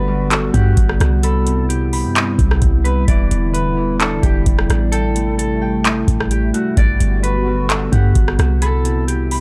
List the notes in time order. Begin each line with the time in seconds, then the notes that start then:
Already playing: G1 D3 G3 A3 B3 D4 F#4 B4
0.08 G3
0.31 F#4 A4, clap, closed hi-hat
0.54 G2 G4 F#5, kick, closed hi-hat
0.77 G1, kick, closed hi-hat
0.89 cross-stick
1.00 C2 F#4, cross-stick, closed hi-hat
1.23 C3 E4 A4 B5, closed hi-hat
1.46 C3, closed hi-hat
1.69 G4, closed hi-hat
1.93 B5, open hi-hat
2.04 G2
2.16 C3, clap, closed hi-hat
2.39 C2, kick, closed hi-hat
2.51 cross-stick
2.62 C2, kick, closed hi-hat
2.84 C3 B4, closed hi-hat
3.08 E1 D3 E3 D5, kick, closed hi-hat
3.31 E1, closed hi-hat
3.54 B4, closed hi-hat
3.77 E3
4.00 D4 A4, clap, closed hi-hat
4.23 E1 G4 G5, kick, closed hi-hat
4.46 E1, kick, closed hi-hat
4.59 cross-stick
4.69 A1 D4, cross-stick, closed hi-hat
4.92 C3 A3 A4 G5, closed hi-hat
5.16 A3, closed hi-hat
5.38 A4, closed hi-hat
5.62 G5
5.85 A3, clap, closed hi-hat
6.08 A1, kick, closed hi-hat
6.20 cross-stick
6.31 G4, closed hi-hat
6.54 A3 F#4, closed hi-hat
6.77 G1 D3 G3 B3 F#4 D5, kick, closed hi-hat
7.00 G1, closed hi-hat
7.23 B4, closed hi-hat
7.46 G3
7.69 F#4 A4, clap, closed hi-hat
7.92 G2 G4 F#5, kick, closed hi-hat
8.15 G1, kick, closed hi-hat
8.28 cross-stick
8.39 C2 F#4, cross-stick, closed hi-hat
8.62 C3 E4 A4 B5, closed hi-hat
8.84 C3, closed hi-hat
9.08 G4, closed hi-hat
9.31 B5, open hi-hat